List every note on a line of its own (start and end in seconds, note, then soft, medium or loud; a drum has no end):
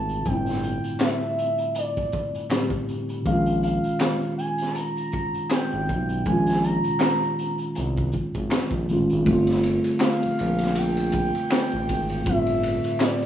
0.00 0.23 G#1 medium
0.00 0.22 D3 soft
0.00 0.23 G3 soft
0.00 0.21 A3 medium
0.00 0.24 C4 medium
0.00 0.25 F4 medium
0.00 0.28 A5 loud
0.09 closed hi-hat soft
0.09 shaker soft
0.22 2.45 A2 medium
0.22 2.46 D3 medium
0.22 1.03 G5 loud
0.22 kick loud
0.22 closed hi-hat medium
0.22 shaker medium
0.27 0.79 G1 loud
0.27 2.47 G3 medium
0.27 2.49 C4 medium
0.32 2.50 E4 medium
0.46 snare soft
0.46 closed hi-hat soft
0.46 shaker soft
0.63 closed hi-hat medium
0.84 0.92 G1 soft
0.84 closed hi-hat soft
0.84 shaker soft
1.00 1.76 E5 loud
1.00 finger snap medium
1.00 snare loud
1.00 clap medium
1.00 closed hi-hat medium
1.00 shaker medium
1.21 closed hi-hat soft
1.21 shaker soft
1.39 closed hi-hat medium
1.58 closed hi-hat soft
1.58 shaker soft
1.75 2.48 D5 medium
1.75 closed hi-hat medium
1.75 shaker medium
1.96 kick medium
1.96 closed hi-hat soft
1.96 shaker medium
2.12 kick medium
2.12 closed hi-hat medium
2.34 closed hi-hat soft
2.34 shaker soft
2.50 3.25 A2 soft
2.50 3.26 D3 soft
2.50 3.27 G3 soft
2.50 3.27 C4 soft
2.50 finger snap medium
2.50 snare loud
2.50 clap medium
2.50 closed hi-hat medium
2.50 shaker medium
2.55 3.28 G4 medium
2.70 kick medium
2.70 closed hi-hat soft
2.70 shaker soft
2.88 closed hi-hat medium
2.88 shaker soft
3.09 closed hi-hat soft
3.09 shaker soft
3.22 6.20 A#2 medium
3.22 6.21 D#3 medium
3.22 3.61 F5 loud
3.22 kick loud
3.22 closed hi-hat medium
3.22 shaker medium
3.27 3.79 A#1 medium
3.27 6.23 G#3 medium
3.27 6.24 C#4 medium
3.32 6.25 F4 medium
3.46 closed hi-hat soft
3.46 shaker soft
3.63 4.34 F5 loud
3.63 closed hi-hat medium
3.84 3.92 G#1 soft
3.84 closed hi-hat soft
3.84 shaker soft
4.00 finger snap medium
4.00 snare loud
4.00 clap medium
4.00 closed hi-hat medium
4.00 shaker soft
4.21 closed hi-hat soft
4.21 shaker soft
4.38 4.73 G#5 loud
4.38 closed hi-hat medium
4.58 snare soft
4.58 closed hi-hat medium
4.58 shaker soft
4.71 4.77 A5 medium
4.71 closed hi-hat medium
4.71 shaker medium
4.76 5.50 A#5 loud
4.96 closed hi-hat soft
4.96 shaker medium
5.12 kick medium
5.12 closed hi-hat medium
5.34 closed hi-hat soft
5.34 shaker soft
5.51 6.28 G5 loud
5.51 finger snap medium
5.51 snare loud
5.51 clap medium
5.51 closed hi-hat medium
5.51 shaker medium
5.71 5.92 G#1 medium
5.71 closed hi-hat soft
5.71 shaker soft
5.88 6.23 B1 medium
5.88 kick medium
5.88 closed hi-hat medium
5.88 shaker soft
6.09 closed hi-hat soft
6.09 shaker soft
6.22 8.83 A#2 medium
6.22 8.84 D#3 medium
6.22 6.65 G#5 loud
6.22 kick loud
6.22 closed hi-hat medium
6.22 shaker medium
6.27 6.79 A#1 loud
6.27 8.85 G#3 medium
6.27 8.86 C#4 medium
6.32 8.87 F4 medium
6.47 snare soft
6.47 closed hi-hat soft
6.47 shaker soft
6.63 8.14 A#5 loud
6.63 closed hi-hat medium
6.84 6.92 C2 soft
6.84 closed hi-hat soft
6.84 shaker soft
7.00 finger snap medium
7.00 snare loud
7.00 clap medium
7.00 closed hi-hat medium
7.00 shaker medium
7.22 closed hi-hat soft
7.22 shaker soft
7.39 closed hi-hat medium
7.58 closed hi-hat soft
7.58 shaker soft
7.75 8.11 C2 loud
7.75 closed hi-hat medium
7.75 shaker medium
7.97 kick medium
7.97 closed hi-hat soft
7.97 shaker medium
8.12 8.23 G#1 soft
8.12 kick medium
8.12 closed hi-hat medium
8.34 8.50 G#1 medium
8.34 kick medium
8.34 closed hi-hat soft
8.34 shaker soft
8.51 finger snap medium
8.51 snare loud
8.51 clap medium
8.51 closed hi-hat medium
8.51 shaker medium
8.71 8.87 A#1 medium
8.71 kick medium
8.71 closed hi-hat soft
8.71 shaker soft
8.88 9.09 A1 medium
8.88 9.26 A#2 medium
8.88 9.26 D#3 medium
8.88 9.27 G#3 medium
8.88 9.28 C#4 medium
8.88 closed hi-hat medium
8.88 shaker soft
8.93 9.28 F4 medium
9.09 9.26 G#1 loud
9.09 closed hi-hat soft
9.09 shaker soft
9.23 12.22 D3 medium
9.23 12.21 A3 medium
9.23 kick loud
9.23 ride medium
9.23 shaker medium
9.27 9.79 G1 loud
9.27 12.23 G3 medium
9.27 12.24 C4 medium
9.33 12.25 F4 medium
9.47 snare soft
9.47 ride soft
9.47 shaker medium
9.62 ride medium
9.62 shaker medium
9.84 ride soft
9.84 shaker medium
10.00 10.79 F5 loud
10.00 finger snap medium
10.00 snare loud
10.00 clap loud
10.00 ride medium
10.00 shaker medium
10.21 10.30 A#1 soft
10.21 ride soft
10.21 shaker soft
10.39 11.31 A#1 loud
10.39 ride medium
10.39 shaker soft
10.59 snare soft
10.59 ride soft
10.59 shaker medium
10.75 12.30 G5 loud
10.75 ride medium
10.75 shaker medium
10.97 ride soft
10.97 shaker medium
11.12 kick loud
11.12 ride medium
11.12 shaker medium
11.34 ride soft
11.34 shaker medium
11.51 finger snap medium
11.51 snare loud
11.51 clap loud
11.51 ride medium
11.51 shaker medium
11.72 11.88 A1 medium
11.72 ride soft
11.72 shaker soft
11.89 12.23 G#1 loud
11.89 kick medium
11.89 open hi-hat soft
11.89 ride medium
12.09 ride soft
12.09 shaker soft
12.23 12.79 G1 loud
12.23 13.26 A2 medium
12.23 13.26 D3 medium
12.23 kick loud
12.23 hi-hat pedal medium
12.23 ride medium
12.23 shaker medium
12.28 13.26 G3 medium
12.28 13.26 C4 medium
12.28 13.05 E5 loud
12.33 13.26 F4 medium
12.47 ride soft
12.47 shaker medium
12.62 ride medium
12.62 shaker medium
12.84 ride soft
12.84 shaker medium
13.00 13.26 D5 medium
13.00 finger snap medium
13.00 snare loud
13.00 clap medium
13.00 ride medium
13.00 shaker medium
13.21 ride soft
13.21 shaker soft